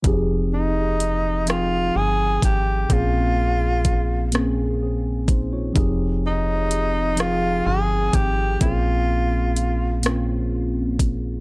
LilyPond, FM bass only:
\new Staff \with { instrumentName = "FM bass" } { \clef bass \time 6/8 \key f \minor \tempo 4. = 42 f,,2 g,,8 aes,,8 | bes,,2. | f,,2 g,,8 aes,,8 | bes,,2. | }